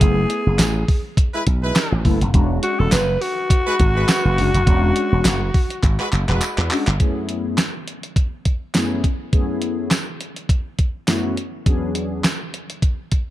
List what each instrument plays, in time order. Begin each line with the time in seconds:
Already playing: alto saxophone G#4
0.01 slap bass F#1, analog polysynth A3 B3 E4 G#4, kick, closed hi-hat
0.30 closed hi-hat
0.46 slap bass F#1
0.59 slap bass A1, snare, clap, closed hi-hat, tambourine
0.88 kick, open hi-hat
1.17 kick, closed hi-hat
1.34 horn section G#3 E4 B4
1.47 slap bass B1, kick, closed hi-hat
1.63 horn section G#3 E4 B4
1.75 snare, clap, closed hi-hat, tambourine
1.92 slap bass A1
2.04 slap bass F#1, analog polysynth A3 B3 E4 A4, kick, open hi-hat
2.21 slap bass F1, closed hi-hat
2.33 slap bass E1, analog polysynth G#3 C#4 D4 F#4, kick, closed hi-hat
2.63 alto saxophone F#4, closed hi-hat
2.80 slap bass E1, alto saxophone A4
2.92 slap bass F#1, alto saxophone B4, snare, clap, closed hi-hat, tambourine
3.22 alto saxophone F#4, open hi-hat
3.50 kick, closed hi-hat
3.67 horn section G#3 F#4 B4
3.80 slap bass G#1, kick, closed hi-hat
3.96 horn section G#3 F#4 B4
4.08 snare, clap, closed hi-hat, tambourine
4.25 slap bass F#1
4.37 slap bass F#1, analog polysynth G#3 C#4 D4 F#4, open hi-hat
4.54 slap bass F1, closed hi-hat
4.67 slap bass E1, analog polysynth G#3 C#4 D4 F#4, kick, closed hi-hat
4.96 closed hi-hat
5.12 slap bass E1
5.25 slap bass F#1, snare, clap, closed hi-hat, tambourine
5.54 kick, open hi-hat
5.70 closed hi-hat
5.83 slap bass G#1, kick, clap, closed hi-hat
6.00 horn section G#3 F#4 B4, clap
6.12 slap bass F#1, clap, closed hi-hat
6.29 slap bass E1, horn section G#3 F#4 B4, clap
6.41 clap, closed hi-hat, tambourine
6.58 slap bass E2, clap
6.71 analog polysynth G#3 C#4 D4 F#4, clap, open hi-hat
6.87 slap bass G1, clap, closed hi-hat
7.00 analog polysynth F#2 A3 B3 C#4 E4 G#4, kick, closed hi-hat
7.29 closed hi-hat
7.58 snare, clap, closed hi-hat, tambourine
7.88 closed hi-hat
8.03 closed hi-hat
8.16 kick, closed hi-hat
8.45 kick, closed hi-hat
8.74 analog polysynth F#2 A3 B3 C#4 E4 G#4, snare, clap, closed hi-hat, tambourine
9.04 kick, closed hi-hat
9.32 analog polysynth F#2 A3 B3 C#4 E4 G#4, kick, closed hi-hat
9.62 closed hi-hat
9.91 snare, clap, closed hi-hat, tambourine
10.21 closed hi-hat
10.36 closed hi-hat
10.49 kick, closed hi-hat
10.79 kick, closed hi-hat
11.07 analog polysynth F#2 A3 B3 C#4 E4 F#4, snare, clap, closed hi-hat, tambourine
11.37 closed hi-hat
11.66 analog polysynth E2 F#3 B3 C#4 D4 G#4, kick, closed hi-hat
11.95 closed hi-hat
12.24 snare, clap, closed hi-hat, tambourine
12.54 closed hi-hat
12.70 closed hi-hat
12.82 kick, closed hi-hat
13.12 kick, closed hi-hat